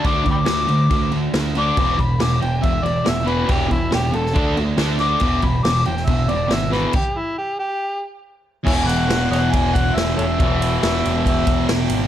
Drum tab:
CC |x-x-x-x-x-x-x-x-|x-x-x-x-x-x-x-x-|x-x-x-x-x-x-x-x-|x-x-x-x-x-x-x-x-|
RD |----------------|----------------|----------------|----------------|
SD |----o-------o---|----o-------o---|----o--o----o-o-|----o--o----o-o-|
BD |o-o-----o-------|o-o-----o-------|o-o-----o-------|o-o-----o-------|

CC |x---------------|x---------------|----------------|
RD |----------------|--x-x-x-x-x-x-x-|x-x-x-x-x-x-x-x-|
SD |----------------|----o-o-----o---|----o-------o---|
BD |o---------------|o-------o-o-----|o-------o-o-----|